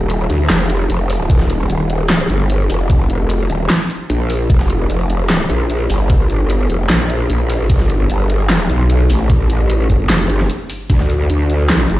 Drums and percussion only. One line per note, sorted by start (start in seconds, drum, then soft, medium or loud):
0.10 closed hi-hat medium
0.30 closed hi-hat medium
0.50 snare loud
0.50 clap medium
0.50 closed hi-hat medium
0.70 closed hi-hat medium
0.90 closed hi-hat medium
1.10 open hi-hat medium
1.30 kick loud
1.30 closed hi-hat medium
1.40 snare soft
1.50 closed hi-hat medium
1.70 closed hi-hat medium
1.90 closed hi-hat medium
2.10 snare loud
2.10 clap medium
2.10 closed hi-hat medium
2.30 closed hi-hat medium
2.50 closed hi-hat medium
2.70 open hi-hat loud
2.90 kick loud
2.90 closed hi-hat medium
3.10 closed hi-hat medium
3.30 closed hi-hat medium
3.50 closed hi-hat medium
3.70 snare loud
3.70 clap medium
3.70 closed hi-hat medium
3.90 closed hi-hat medium
4.10 closed hi-hat medium
4.30 open hi-hat loud
4.50 kick loud
4.50 closed hi-hat medium
4.60 snare soft
4.70 closed hi-hat medium
4.90 closed hi-hat medium
5.10 closed hi-hat soft
5.30 snare loud
5.30 clap medium
5.30 closed hi-hat medium
5.50 closed hi-hat medium
5.70 closed hi-hat medium
5.90 open hi-hat loud
6.10 kick loud
6.10 closed hi-hat medium
6.30 closed hi-hat medium
6.50 closed hi-hat medium
6.70 closed hi-hat medium
6.90 snare loud
6.90 clap medium
6.90 closed hi-hat medium
7.10 closed hi-hat medium
7.30 closed hi-hat medium
7.50 open hi-hat loud
7.70 kick loud
7.70 closed hi-hat medium
7.80 snare soft
7.90 closed hi-hat medium
8.10 closed hi-hat medium
8.30 closed hi-hat medium
8.50 snare loud
8.50 clap medium
8.50 closed hi-hat medium
8.70 closed hi-hat medium
8.90 closed hi-hat medium
9.10 open hi-hat loud
9.30 kick loud
9.30 closed hi-hat medium
9.50 closed hi-hat medium
9.70 closed hi-hat medium
9.90 kick medium
9.90 closed hi-hat medium
10.10 snare loud
10.10 clap medium
10.10 closed hi-hat medium
10.30 closed hi-hat medium
10.40 snare soft
10.50 closed hi-hat medium
10.70 open hi-hat loud
10.90 kick loud
10.90 closed hi-hat medium
11.00 snare soft
11.10 closed hi-hat medium
11.30 closed hi-hat medium
11.50 closed hi-hat medium
11.70 snare loud
11.70 clap medium
11.70 closed hi-hat medium
11.90 closed hi-hat medium